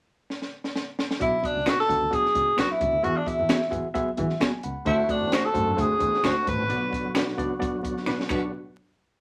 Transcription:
0.30 snare
0.42 snare
0.64 snare
0.76 snare
0.99 snare
1.11 snare
1.19 double bass B1, reed electric piano B2 B3 D4 F#4 D5, tenor saxophone E4, kick, closed hi-hat
1.42 reed electric piano B3 D4 F#4 D5, tenor saxophone D4, kick, closed hi-hat
1.55 double bass C#2
1.66 reed electric piano B3 D4 F#4 D5, clean electric guitar D4 F#4 B4, tenor saxophone F#4, finger snap, snare, closed hi-hat
1.80 tenor saxophone A4, snare
1.88 double bass D2, reed electric piano B3 D4 F#4 D5, kick, closed hi-hat
2.01 double bass D2
2.10 double bass B1, reed electric piano B3 D4 F#4 D5, tenor saxophone G#4, kick, closed hi-hat
2.25 snare
2.35 double bass C#2, reed electric piano B3 D4 F#4 D5, kick, closed hi-hat
2.56 double bass B1, reed electric piano B3 D4 F#4 D5, clean electric guitar D4 F#4 B4, tenor saxophone F#4, finger snap, snare, closed hi-hat
2.71 tenor saxophone E4
2.80 double bass C#2, reed electric piano B3 D4 F#4 D5, kick, closed hi-hat
2.92 double bass D2
3.03 double bass E2, reed electric piano E3 B3 F#4 G#4 E5, tenor saxophone F#4, closed hi-hat
3.16 tenor saxophone D4
3.26 reed electric piano B3 F#4 G#4 E5, tenor saxophone E4, kick, closed hi-hat
3.39 double bass E2
3.49 clean electric guitar B3 F#4 G#4, reed electric piano B3 F#4 G#4 E5, finger snap, snare, closed hi-hat
3.62 snare
3.71 double bass E2, reed electric piano B3 F#4 G#4 E5, kick, closed hi-hat
3.94 double bass B1, reed electric piano B3 F#4 G#4 E5, kick, closed hi-hat
4.17 double bass E3, reed electric piano B3 F#4 G#4 E5, kick, closed hi-hat
4.29 snare
4.40 double bass B1, clean electric guitar B3 F#4 G#4, reed electric piano G#5, finger snap, snare, closed hi-hat
4.63 double bass C#2, reed electric piano F#5 B5, closed hi-hat
4.85 double bass D2, reed electric piano D3 A3 D4 F#4 C5, tonewheel organ D3 A3 C4 F#4, tenor saxophone E4, kick, closed hi-hat
5.08 reed electric piano A3 D4 F#4 C5, tenor saxophone D4, kick, closed hi-hat
5.21 double bass E2
5.30 reed electric piano A3 D4 F#4 C5, clean electric guitar D4 F#4 C5, tenor saxophone F#4, finger snap, snare, closed hi-hat
5.45 tenor saxophone A4
5.53 double bass F#2, reed electric piano A3 D4 F#4 C5, kick, closed hi-hat
5.66 double bass F#2
5.72 tenor saxophone A4
5.77 double bass D2, reed electric piano A3 D4 F#4 C5, tenor saxophone G#4, kick, closed hi-hat
5.99 double bass E2, reed electric piano A3 D4 F#4 C5, kick, closed hi-hat
6.14 snare
6.23 double bass D2, reed electric piano A3 D4 F#4 C5, clean electric guitar D4 F#4 C5, tenor saxophone F#4, finger snap, snare, closed hi-hat
6.46 double bass G#1, reed electric piano A3 D4 F#4 C5, tenor saxophone B4, kick, closed hi-hat
6.58 double bass A1
6.69 double bass B1, reed electric piano B2 B3 D4 F#4 D5, tonewheel organ D3 F#3 B3, closed hi-hat
6.91 reed electric piano B3 D4 F#4 D5, kick, closed hi-hat
7.03 double bass B1
7.14 reed electric piano B3 D4 F#4 D5, clean electric guitar D4 F#4 B4, finger snap, snare, closed hi-hat
7.28 snare
7.38 double bass C#2, reed electric piano B3 D4 F#4 D5, kick, closed hi-hat
7.60 reed electric piano B3 D4 F#4 D5, kick, closed hi-hat
7.72 double bass B1
7.83 double bass B1, reed electric piano B3 D4 F#4 D5, kick, closed hi-hat
7.97 snare
8.06 double bass B2, reed electric piano B3 D4 F#4 D5, clean electric guitar D4 F#4 B4, finger snap, snare
8.20 snare
8.29 reed electric piano B1 B3 D4 F#4 D5, double bass B1, tonewheel organ D3 F#3 B3 F#4, clean electric guitar D4 F#4 B4, finger snap, kick, crash

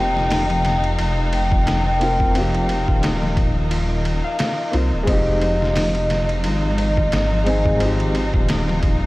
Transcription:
Already playing: detuned saw bass F1, upright piano A#3 C4 F4 G4, harp D#4 F4 C5, violin section D#4, vibraphone G5
0.15 harp F4, snare
0.30 harp D#4, snare, open hi-hat
0.49 harp F3, vibraphone G5, ride
0.65 snare, ride
0.84 ride
0.98 detuned saw bass F1, harp F4, ride
1.32 harp C5, vibraphone G5, ride
1.51 harp F4, kick
1.66 harp D#4, snare, ride
1.85 harp F3, vibraphone G5
1.99 upright piano A#3 C4 F4, ride
2.04 upright piano A#4
2.20 kick
2.31 upright piano A#3 C4, harp F4
2.35 upright piano F4, ride
2.40 upright piano G4
2.55 ride
2.69 harp C5, ride
2.88 detuned saw bass D#1, harp F4, kick
3.02 harp D#4, snare, ride
3.22 harp F3, snare
3.37 kick, ride
3.70 harp F4, ride
4.05 ride
4.24 harp F5
4.39 harp F4, snare, ride
4.71 detuned saw bass C2, upright piano A#3 C4 F4, ride
4.76 upright piano C5
4.92 detuned saw bass D#1, harp F4
5.03 upright piano G#3 C4, harp F4
5.07 detuned saw bass F1, violin section D#4, upright piano D#4, vibraphone D#5, kick, ride
5.12 upright piano G4
5.41 harp C5, vibraphone D#5, ride
5.61 harp F4, snare
5.75 harp D#4, snare, open hi-hat
5.95 harp F3, vibraphone D#5, ride
6.10 snare, ride
6.29 ride
6.44 detuned saw bass G#1, harp F4, ride
6.78 harp C5, vibraphone D#5, ride
6.97 harp F4, kick
7.12 harp D#4, snare, ride
7.31 harp F3, vibraphone D#5
7.44 upright piano G#3 C4 D#4, ride
7.49 upright piano G#4
7.66 kick
7.76 upright piano G#3 C4
7.80 upright piano D#4, harp F4, ride
7.85 upright piano G4
8.00 ride
8.15 harp C5, ride
8.34 detuned saw bass D#1, harp F4, kick
8.48 harp D#4, snare, ride
8.68 harp F3, snare
8.83 kick, ride

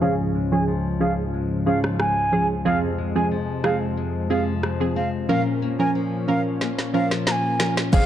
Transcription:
Already playing: nylon-string guitar F3 G#3
0.01 analog synth pad C#2 G#2 F3, nylon-string guitar C#3 C#4, synth stab F3 C#4 G#4, flute F5
0.35 nylon-string guitar G#3
0.52 synth stab F3 C#4 G#4, flute G#5
0.68 nylon-string guitar F3
1.00 synth stab F3 C#4 G#4, nylon-string guitar C#4, flute F5
1.34 nylon-string guitar G#3
1.66 synth stab F3 C#4 G#4, nylon-string guitar F3, flute F5
1.84 cross-stick
1.99 nylon-string guitar G#3, flute G#5, cross-stick
2.32 synth stab F3 C#4 G#4, nylon-string guitar C#4
2.65 nylon-string guitar F2 C4, analog synth pad F2 C3 G#3, synth stab F3 C4 G#4, flute F5
2.98 nylon-string guitar G#3
3.16 synth stab F3 C4 G#4, flute G#5
3.31 nylon-string guitar F3
3.64 synth stab F3 C4 G#4, nylon-string guitar C4, flute F5, cross-stick
3.97 nylon-string guitar G#3
4.30 synth stab F3 C4 G#4, nylon-string guitar F3, flute F5
4.63 nylon-string guitar G#3, cross-stick
4.80 synth stab F3 C4 G#4
4.96 nylon-string guitar C4, flute F5
5.29 analog synth pad A#2 F3 C#4, nylon-string guitar A#2 C#4, synth stab F3 C#4 A#4, flute F5
5.62 nylon-string guitar A#3
5.79 synth stab F3 C#4 A#4, flute G#5
5.95 nylon-string guitar F3
6.28 synth stab F3 C#4 A#4, nylon-string guitar C#4, flute F5
6.61 nylon-string guitar A#3, snare
6.79 snare
6.94 synth stab F3 C#4 A#4, nylon-string guitar F3, flute F5
7.11 snare
7.27 nylon-string guitar A#3, flute A#5, snare
7.32 flute G#5
7.59 synth stab F3 C#4 A#4, nylon-string guitar C#4, snare
7.77 snare
7.93 sub bass F1, nylon-string guitar F2, synth stab F3 C4 G#4, analog synth pad F3 C4 G#4, flute F5, kick, crash, shaker

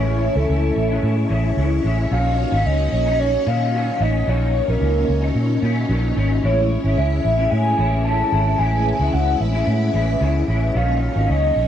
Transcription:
Already playing: fingered electric bass A1, clean electric guitar A2 E3 G#3 C#4 E4, string machine E3 C#4 E4 C#5 A5, soft synth lead C#5
0.35 fingered electric bass C#2, clean electric guitar C#4 E4, soft synth lead A4
0.50 fingered electric bass C#2
0.76 fingered electric bass A1
0.89 clean electric guitar G#3 C#4 E4
1.03 fingered electric bass A2
1.29 fingered electric bass A1, clean electric guitar E3 G#3 C#4 E4
1.56 fingered electric bass C#2, clean electric guitar E3 G#3 C#4 E4
1.83 fingered electric bass A1, clean electric guitar E3 G#3 C#4 E4
2.10 fingered electric bass A#1, clean electric guitar A#2 D#3 F#3 C#4 D#4, string machine A#3 D#4 F#4, soft synth lead F5
2.52 fingered electric bass G#1, clean electric guitar F#3 C#4 D#4
2.66 fingered electric bass C#2, soft synth lead D#5
2.92 fingered electric bass A#1
3.06 clean electric guitar F#3 C#4 D#4
3.19 soft synth lead C#5
3.46 fingered electric bass A#2, clean electric guitar D#3 F#3 C#4 D#4, soft synth lead F5
3.73 clean electric guitar D#3 F#3 C#4 D#4
4.00 fingered electric bass A1, clean electric guitar D#3 F#3 C#4 D#4, soft synth lead D#5
4.26 fingered electric bass A#1, clean electric guitar A#2 D#3 F#3 C#4 D#4, string machine F4, soft synth lead C#5
4.68 fingered electric bass A#1, clean electric guitar F#3 C#4 D#4, soft synth lead A#4
4.81 fingered electric bass C#2
5.08 fingered electric bass C#2
5.22 clean electric guitar F#3 C#4 D#4
5.35 fingered electric bass A#2
5.62 fingered electric bass A#2, clean electric guitar D#3 F#3 C#4 D#4
5.89 fingered electric bass A#1, clean electric guitar D#3 F#3 C#4 D#4
6.15 fingered electric bass G#1, clean electric guitar D#3 F#3 C#4 D#4
6.42 fingered electric bass A1, clean electric guitar A2 E3 G#3 C#4 E4, string machine G#3 E4 C#5, soft synth lead C#5
6.83 fingered electric bass G#1, clean electric guitar G#3 C#4 E4
6.97 fingered electric bass C#2, soft synth lead E5
7.25 fingered electric bass A1
7.37 clean electric guitar G#3 C#4 E4
7.51 fingered electric bass A2, soft synth lead G#5
7.77 fingered electric bass A1, clean electric guitar E3 G#3 C#4 E4
8.04 clean electric guitar E3 G#3 C#4 E4, soft synth lead A5
8.31 fingered electric bass G#1, clean electric guitar E3 G#3 C#4 E4
8.58 fingered electric bass A1, clean electric guitar A2 E3 G#3 C#4 E4, string machine B4, soft synth lead G#5
8.98 fingered electric bass C#2, clean electric guitar G#3 C#4 E4
9.13 fingered electric bass C#2, soft synth lead F#5
9.40 fingered electric bass A1, soft synth lead E5
9.52 clean electric guitar G#3 C#4 E4
9.67 fingered electric bass A2
9.93 fingered electric bass A1, clean electric guitar E3 G#3 C#4 E4
10.20 fingered electric bass C#2, clean electric guitar E3 G#3 C#4 E4
10.47 fingered electric bass A1, clean electric guitar E3 G#3 C#4 E4
10.74 fingered electric bass A#1, clean electric guitar A#2 D#3 F#3 C#4 D#4, string machine A#3 C#4 D#4 F#4 C#5, soft synth lead F5
11.15 fingered electric bass G#1, clean electric guitar F#3 C#4 D#4
11.29 fingered electric bass C#2, soft synth lead D#5
11.56 fingered electric bass A#1

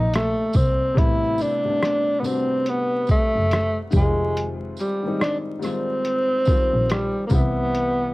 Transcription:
Already playing: double bass A#1, upright piano A#2 C3 D#3 F3 D5, tenor saxophone D#4
0.14 tenor saxophone A3, cross-stick, closed hi-hat
0.53 double bass C2, tenor saxophone C4, kick, tambourine, shaker
0.94 double bass A1, upright piano C3 G3 A3, kick, closed hi-hat
0.99 upright piano B3 E4, tenor saxophone E4
1.38 tenor saxophone D4, tambourine, shaker
1.65 upright piano C3 G3 A3
1.69 upright piano B3 D4
1.83 cross-stick, closed hi-hat
2.20 upright piano C3 G3, tenor saxophone B3
2.24 upright piano A3 F#4 B4, tenor saxophone C4, tambourine, shaker
2.66 tenor saxophone B3, closed hi-hat
3.07 tenor saxophone A3, kick, tambourine, shaker
3.36 double bass F#1
3.51 cross-stick, closed hi-hat
3.90 double bass F1, upright piano D#3 G#3 C4 G4, kick, tambourine, shaker
3.95 tenor saxophone G#3, upright piano F4
4.36 closed hi-hat
4.76 tenor saxophone G3, tambourine, shaker
5.03 upright piano D#3 G3 G#3
5.07 upright piano C4 D#4
5.21 tenor saxophone D4, cross-stick, closed hi-hat
5.59 upright piano D#3 G3 G#3 C4, tenor saxophone C4, tambourine, shaker
5.64 upright piano F4, cross-stick
6.05 closed hi-hat
6.45 upright piano D#3 F3 G3, kick, tambourine, shaker
6.49 upright piano C4 F4
6.74 double bass A#1
6.90 tenor saxophone G3, cross-stick, closed hi-hat
7.27 upright piano C3 E3, tenor saxophone A#3, tambourine, shaker
7.31 double bass C2, upright piano G3 B3 E4, tenor saxophone B3, kick
7.75 closed hi-hat

